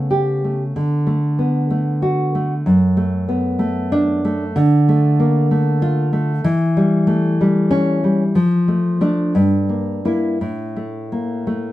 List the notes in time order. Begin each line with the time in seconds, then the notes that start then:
Already playing: C#3 A3 B3
0.11 G4
0.44 A3
0.76 D3
1.07 A3
1.39 B3
1.70 A3
2.02 F#4
2.35 A3
2.66 F#2
2.97 A3
3.29 B3
3.59 A3
3.92 D4
4.25 A3
4.56 D3
4.89 A3
5.20 A#3
5.51 A3
5.82 F4
6.13 A3
6.44 E3
6.77 G3
7.07 A3
7.41 G3
7.71 C#4
8.04 G3
8.35 F3
8.68 A3
9.01 A3 D4
9.35 G2
9.69 A#3
10.05 A#3 E4
10.41 A2
10.76 A3
11.12 A#3
11.47 A3